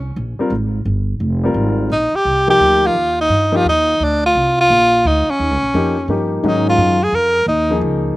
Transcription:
Already playing: upright bass C2
0.16 upright bass A#1
0.39 upright piano G3 C4 F4 A#4, muted upright bass stroke
0.50 upright bass G#1
0.85 upright bass G1
1.20 upright bass F1
1.43 upright piano G3 C4 F4 A#4
1.54 upright bass G#1
1.90 upright bass A#1, tenor saxophone D#4
2.13 tenor saxophone G4, muted upright bass stroke
2.25 upright bass C2
2.47 upright piano F3 A#3 D#4 G4, tenor saxophone G4
2.60 upright bass D2
2.86 tenor saxophone F4
2.95 upright bass D#2
3.21 tenor saxophone D#4
3.29 upright bass G2
3.52 upright piano F3 A#3 D#4 G4
3.56 tenor saxophone F4
3.65 upright bass D#2
3.69 tenor saxophone D#4
4.00 upright bass D2
4.04 tenor saxophone D4
4.26 tenor saxophone F4
4.35 upright bass C2
4.61 tenor saxophone F4
4.70 upright bass A#1
5.05 upright bass D2, tenor saxophone D#4
5.30 tenor saxophone C#4
5.39 upright bass D#2
5.51 upright bass C#2
5.62 upright bass A#1
5.74 upright bass F2, upright piano F3 A#3 D#4 G4
6.08 upright bass G2, upright piano F3 A#3 D#4 G4
6.43 upright bass G#2, upright piano D#3 F#3 G#3 C#4, tenor saxophone D#4
6.69 tenor saxophone F4
6.78 upright bass F#2
7.03 tenor saxophone G#4
7.12 upright bass F2, tenor saxophone A#4
7.46 upright bass D#2, tenor saxophone D#4
7.70 upright piano F3 A#3 D#4 G#4
7.81 upright bass C#2

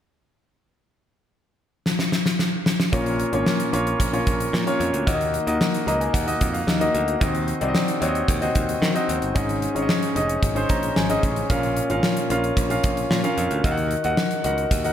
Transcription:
1.86 snare
1.99 snare
2.12 snare
2.26 snare
2.39 snare
2.66 snare
2.80 snare
2.92 picked electric bass A#1, grand piano A#2 A#3 C#4 F4 C#5, kick, closed hi-hat
3.06 closed hi-hat
3.20 closed hi-hat
3.32 picked electric bass G#1, grand piano A#3 C#4 F4 C#5, closed hi-hat
3.46 snare
3.60 closed hi-hat
3.72 picked electric bass A#1, grand piano A#3 C#4 F4 C#5, closed hi-hat
3.87 closed hi-hat
4.00 picked electric bass A#1, kick, closed hi-hat
4.13 grand piano A#3 C#4 F4 C#5, closed hi-hat
4.27 picked electric bass A#1, kick, closed hi-hat
4.40 closed hi-hat
4.53 picked electric bass A#2, snare
4.66 grand piano A#3 C#4 F4 C#5, closed hi-hat
4.80 picked electric bass F2, closed hi-hat
4.93 picked electric bass D2, closed hi-hat
5.06 picked electric bass D#2, grand piano D#3 A#3 D#4 F#4 C#5, kick, closed hi-hat
5.14 grand piano D#5
5.21 closed hi-hat
5.34 closed hi-hat
5.47 picked electric bass D#2, grand piano A#3 D#4 F#4 D#5, closed hi-hat
5.61 snare
5.74 closed hi-hat
5.87 picked electric bass C#2, grand piano A#3 D#4 F#4 D#5 A#5, closed hi-hat
6.01 grand piano G#5, closed hi-hat
6.14 picked electric bass D#2, grand piano F#5, kick, closed hi-hat
6.26 grand piano A#3 D#4 F#4 D#5, closed hi-hat
6.41 picked electric bass F2, kick, closed hi-hat
6.54 grand piano F5, closed hi-hat
6.67 picked electric bass D#2, grand piano D#5, snare
6.80 grand piano A#3 D#4 F#4 D#5, closed hi-hat
6.94 picked electric bass D2, closed hi-hat
7.08 closed hi-hat
7.20 picked electric bass D#2, grand piano D#3 C4 D#4 F#4 D#5, kick, closed hi-hat
7.35 closed hi-hat
7.48 closed hi-hat
7.61 picked electric bass C2, grand piano C4 D#4 F#4 D5, closed hi-hat
7.68 grand piano D#5
7.75 snare
7.88 closed hi-hat
8.01 picked electric bass D#2, grand piano C4 D#4 F#4 C#5, closed hi-hat
8.09 grand piano D#5
8.15 closed hi-hat
8.28 picked electric bass D#2, kick, closed hi-hat
8.41 grand piano C4 D#4 F#4 D#5, closed hi-hat
8.55 picked electric bass D#2, kick, closed hi-hat
8.69 closed hi-hat
8.82 picked electric bass D#3, snare
8.95 grand piano C4 D#4 F#4 D#5, closed hi-hat
9.09 picked electric bass D#2, closed hi-hat
9.22 picked electric bass G1, closed hi-hat
9.35 picked electric bass G#1, grand piano G#2 C#4 D#4 G#4 D#5, kick, closed hi-hat
9.49 closed hi-hat
9.62 closed hi-hat
9.75 picked electric bass G#1, grand piano C#4 D#4 G#4 C#5, closed hi-hat
9.82 grand piano D#5
9.89 snare
10.02 closed hi-hat
10.16 picked electric bass F1, grand piano C#4 D#4 G#4 D#5, closed hi-hat
10.29 closed hi-hat
10.43 picked electric bass G#1, kick, closed hi-hat
10.55 grand piano C#4 D#4 G#4 C5, closed hi-hat
10.69 picked electric bass A#1, grand piano A#5, kick, closed hi-hat
10.83 closed hi-hat
10.96 picked electric bass G#1, grand piano G#5, snare
11.09 grand piano C#4 D#4 G#4 D#5, closed hi-hat
11.23 picked electric bass A1, kick, closed hi-hat
11.36 closed hi-hat
11.50 picked electric bass A#1, grand piano A#2 C#4 F4 A#4 F5, kick, closed hi-hat
11.63 closed hi-hat
11.76 closed hi-hat
11.90 picked electric bass G#1, grand piano C#4 F4 A#4 F5, closed hi-hat
12.03 snare
12.17 closed hi-hat
12.30 picked electric bass A#1, grand piano C#4 F4 A#4 F5, closed hi-hat
12.44 closed hi-hat
12.57 picked electric bass A#1, kick, closed hi-hat
12.70 grand piano C#4 F4 A#4 F5, closed hi-hat
12.84 picked electric bass A#1, kick, closed hi-hat
12.97 closed hi-hat
13.11 picked electric bass A#2, snare
13.24 grand piano C#4 F4 A#4 F5, closed hi-hat
13.38 picked electric bass F2, closed hi-hat
13.51 picked electric bass D2, closed hi-hat
13.64 picked electric bass D#2, grand piano D#3 D#4 F#4 A#4 F5, kick, closed hi-hat
13.72 grand piano F#5
13.77 closed hi-hat
13.91 closed hi-hat
14.04 picked electric bass D#2, grand piano D#4 F#4 A#4 F#5, closed hi-hat
14.17 snare
14.31 closed hi-hat
14.44 picked electric bass C#2, grand piano D#4 F#4 A#4 F#5, closed hi-hat
14.58 closed hi-hat
14.71 picked electric bass D#2, kick, closed hi-hat
14.84 grand piano D#4 F#4 A#4 F#5, closed hi-hat

